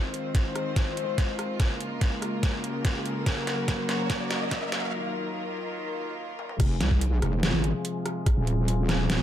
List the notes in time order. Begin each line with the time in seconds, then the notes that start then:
Already playing: D#3 G#3 C4 F4 C5, riser
0.14 closed hi-hat
0.35 kick, snare, closed hi-hat
0.56 cross-stick, closed hi-hat
0.76 kick, snare, closed hi-hat
0.97 closed hi-hat
1.18 kick, snare, closed hi-hat
1.39 cross-stick, closed hi-hat
1.60 C#3 A#3 A#4, kick, cross-stick, snare, closed hi-hat
1.81 closed hi-hat
2.01 kick, snare, closed hi-hat
2.22 cross-stick, closed hi-hat
2.43 kick, snare, closed hi-hat
2.64 closed hi-hat
2.85 kick, snare, closed hi-hat
3.06 closed hi-hat
3.26 F#3 F#4, kick, snare, closed hi-hat
3.47 snare, closed hi-hat
3.68 kick, snare, closed hi-hat
3.89 snare, closed hi-hat
4.10 kick, snare, closed hi-hat
4.31 snare, closed hi-hat
4.51 kick, snare, closed hi-hat
4.72 snare, closed hi-hat
4.93 D#3 F4
6.39 high tom
6.49 mid tom
6.60 F1 C3 F3 G#3 F4 G#4, kick, cross-stick, closed hi-hat, crash
6.81 C2, snare, closed hi-hat
6.91 kick
7.01 closed hi-hat
7.22 F1, cross-stick, closed hi-hat
7.43 snare, closed hi-hat
7.54 G#1
7.64 closed hi-hat
7.85 closed hi-hat
8.06 cross-stick, closed hi-hat
8.26 kick, cross-stick, closed hi-hat
8.37 D#1
8.47 closed hi-hat
8.68 closed hi-hat
8.89 cross-stick, snare, closed hi-hat
9.10 snare, closed hi-hat